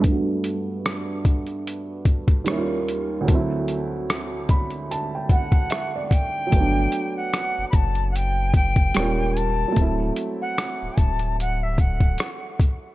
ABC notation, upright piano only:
X:1
M:4/4
L:1/16
Q:"Swing 16ths" 1/4=74
K:G
V:1 name="Upright piano"
z16 | z6 b2 a g f2 e d3 | z16 | z16 |]
V:2 name="Upright piano"
[G,,A,B,DF]12 [_E,,G,_B,_D=E=F]4 | [D,,F,A,CE]16 | [F,A,B,D]12 [G,_B,_D=F]4 | [F,A,CE]16 |]